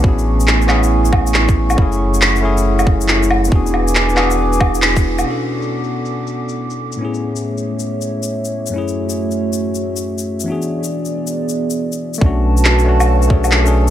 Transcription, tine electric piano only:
X:1
M:4/4
L:1/16
Q:"Swing 16ths" 1/4=138
K:Bdor
V:1 name="Tine electric piano"
[B,CEG]6 [B,CEG] z8 z | [A,CEG]6 [A,CEG] z8 z | [B,DFG]6 [B,DFG] z8 z | [B,,CDFA]16 |
[A,,B,CEG]16 | [F,,A,CEG]16 | [E,B,DFG]16 | [A,CDF]6 [A,CDF] z3 [A,CDG]3 [A,CDG]3 |]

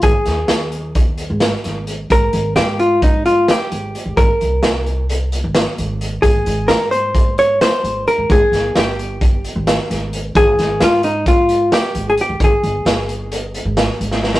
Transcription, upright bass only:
X:1
M:9/8
L:1/16
Q:3/8=87
K:Ab
V:1 name="Upright bass" clef=bass
A,,, z E,,2 E,,6- E,, A,,,2 z A,,,4 | A,,,2 A,,,2 A,,8 z2 A,,,2 z A,,, | A,,, z C,,2 C,,6- C,, A,,,2 z A,,,4 | A,,,2 A,,,2 A,,8 z2 A,,,2 z A,,, |
A,,, z G,,,2 G,,,6- G,,, A,,,2 z A,,,4 | A,,,2 A,,,2 A,,8 z2 A,,,2 z A,,, | A,,, z G,,,2 G,,,6- G,,, A,,,2 z A,,,4 |]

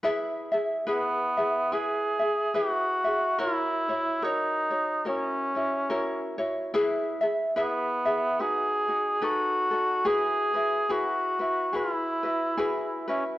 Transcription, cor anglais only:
X:1
M:4/4
L:1/8
Q:"Swing" 1/4=72
K:E
V:1 name="Cor anglais"
z2 B,2 G2 F2 | E2 D2 C3 z | z2 B,2 G2 F2 | G2 F2 E3 C |]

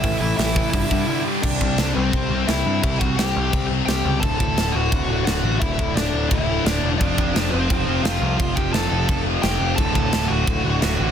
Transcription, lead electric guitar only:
X:1
M:4/4
L:1/16
Q:1/4=173
K:Glyd
V:1 name="Lead electric guitar"
[Ee]2 [Ee]2 [Ee]8- [Ee]2 z2 | [K:Clyd] [Dd]6 [Cc]6 [Ee]4 | [Ee]2 [Ff]2 [Gg]6 z2 [Gg]4 | [Aa]2 [Aa]4 [Ff]6 [Ff]4 |
[Ee]4 [Dd]4 [Ee]4 [Dd]3 z | [Dd]6 [Cc]6 [=F=f]4 | [=F=f]2 [Gg]2 [Aa]6 z2 [Gg]4 | [Aa]2 [Aa]4 [Ff]6 [Ff]4 |]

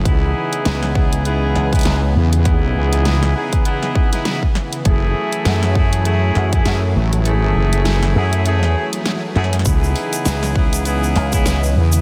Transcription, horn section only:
X:1
M:4/4
L:1/16
Q:"Swing 16ths" 1/4=100
K:C#m
V:1 name="Horn section"
[B,DEG]6 [B,DEG]2 [B,DEG]3 [B,DEG]2 z3 | [B,DEG]6 [B,DEG]2 [B,DEG]3 [B,DEG]2 z3 | [A,CEG]6 [A,CEG]2 [A,CEG]3 [A,CEG]2 z3 | [A,CEG]6 [A,CEG]2 [A,CEG]3 z3 [A,CEG] z |
[B,DEG]6 [B,DEG]2 [B,DEG]3 [B,DEG]2 z3 |]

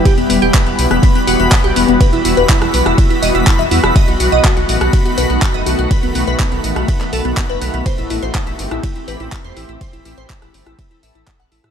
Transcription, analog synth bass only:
X:1
M:4/4
L:1/16
Q:1/4=123
K:Em
V:1 name="Analog synth bass" clef=bass
z E,,, E,,, E,,, z E,,, B,,, E,,, z2 E,,, E,,, z B,,, E,,, E,,, | z E,,, E,,, E,,, z E,,, B,,, E,,, z2 E,,, E,,, z E,,, E,, E,,, | z B,,, B,,, B,,, z B,,, A,,, B,,, z2 B,,, B,,, z F,,, B,,, B,,, | z B,,, B,,, B,,, z B,,, A,,, B,,, z2 B,,, B,,, z F,,, B,,, B,,, |
z A,,, A,,, A,,, z A,,, G,,, A,,, z2 A,,, A,,, z E,, A,,, A,,, | z A,,, A,,, A,,, z A,,, G,,, A,,, z2 A,,, A,,, z A,,, A,,, A,, |]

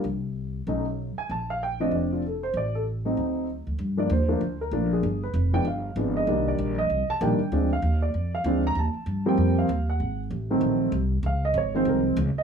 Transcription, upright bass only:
X:1
M:4/4
L:1/8
Q:"Swing" 1/4=193
K:Gm
V:1 name="Upright bass" clef=bass
C,,4 =B,,,3 z | B,,,4 F,,,4 | A,,,4 D,,3 D,, | G,,2 E,,2 D,,2 B,,,2 |
G,,,2 F,,,2 G,,,2 _A,,,2 | C,,2 B,,,2 C,, z B,,, z | D,,2 E,,2 F,,2 D,,2 | E,, z G,,2 F,,2 E,,2 |
_A,,,2 =A,,,2 B,,,2 C,,2 | _D,,2 _A,,,2 C,,2 D,, z |]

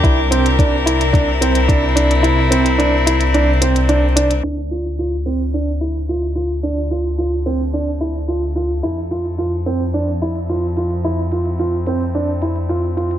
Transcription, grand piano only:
X:1
M:4/4
L:1/8
Q:1/4=109
K:Dm
V:1 name="Grand piano"
E C D E D C D D | E C D E D C D D | D F F C D E F F | D F F C D E F F |
E F F C D E F F | E F F C D E F F |]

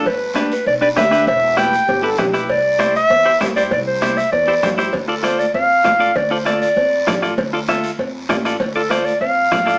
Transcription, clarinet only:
X:1
M:4/4
L:1/8
Q:1/4=197
K:Ddor
V:1 name="Clarinet"
B2 z B d d e2 | e2 g3 z3 | d3 e3 z d | d c2 e d3 z |
z A c d f4 | d c d d4 z | z8 | z A c d f4 |]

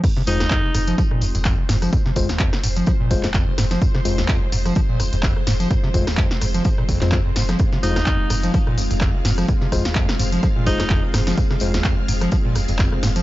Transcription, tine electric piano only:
X:1
M:4/4
L:1/16
Q:"Swing 16ths" 1/4=127
K:Fm
V:1 name="Tine electric piano"
z2 [A,Fc] z12 z | z2 [A,Fc] z6 z [A,Fc] z4 z | z2 [A,Fc] z12 z | z2 [A,Fc] z8 [A,Fc] z4 |
z2 [A,Fc] z12 z | z2 [A,Fc] z6 z [A,Fc] z4 z | z2 [A,Fc] z12 z |]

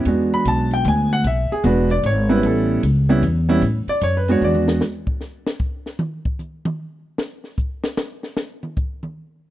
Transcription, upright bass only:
X:1
M:3/4
L:1/8
Q:"Swing" 1/4=151
K:A
V:1 name="Upright bass" clef=bass
E,,2 B,,,2 D,,2 | B,,, z E,,,2 G,,,2 | A,,,2 C,,2 E,,2 | A,, z F,,2 E,,2 |
z6 | z6 | z6 | z6 |]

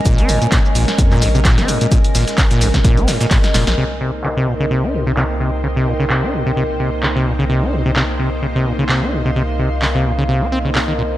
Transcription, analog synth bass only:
X:1
M:4/4
L:1/16
Q:"Swing 16ths" 1/4=129
K:Cphr
V:1 name="Analog synth bass" clef=bass
B,,,2 A,,, z3 B,,, z F,,2 B,,,3 A,,, z2 | z2 A,,, z3 B,,, z2 B,,, z4 F,,, B,,, | C,,16- | C,,16- |
C,,16- | C,,16 |]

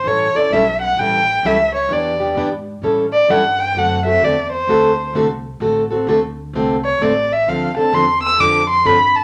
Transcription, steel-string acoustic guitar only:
X:1
M:4/4
L:1/8
Q:"Swing" 1/4=130
K:D
V:1 name="Steel-string acoustic guitar"
[E,G,CEA] [CEA] [E,G,CEA] z [E,G,CEA] z [E,G,CEA] z | [E,B,DG] [B,DG] [E,B,DG] z [E,G,CEA] z [E,G,CEA] z | [D,A,=CFA] [CFA] [D,A,CFA] z [D,A,CFA] z [D,A,CFA] z | [D,A,=CFA] [CFA] [D,A,CFA] z [D,A,CFA] z [D,A,CFA] z |
[D,=F,=CDA] [CDA] [D,F,CDA] z [D,F,CDA] z [D,F,CDA] z |]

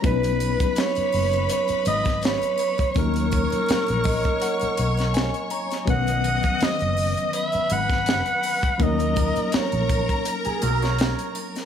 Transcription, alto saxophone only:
X:1
M:4/4
L:1/8
Q:"Swing 16ths" 1/4=82
K:B
V:1 name="Alto saxophone"
B2 c2 c d c2 | A6- A z | f2 d2 e f3 | d2 c2 z4 |]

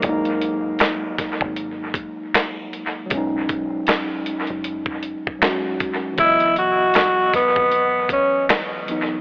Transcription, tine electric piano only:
X:1
M:4/4
L:1/8
Q:"Swing 16ths" 1/4=78
K:C#dor
V:1 name="Tine electric piano"
[F,G,A,D]8 | [F,G,CD]6 [F,G,CF]2 | [E,F,B,d]6- [E,F,B,d] [E,F,B,D] |]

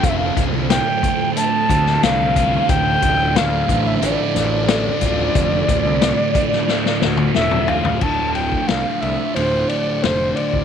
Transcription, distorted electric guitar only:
X:1
M:4/4
L:1/8
Q:1/4=90
K:Dm
V:1 name="Distorted electric guitar" clef=bass
[D,,D,A,F]2 A,, D, A, D, A, F | D,,2 A,, D, A, D, A, F | D,,2 A,, D, A, D, A, F | [D,,A,,D,]4 [D,,A,,D,]4 |]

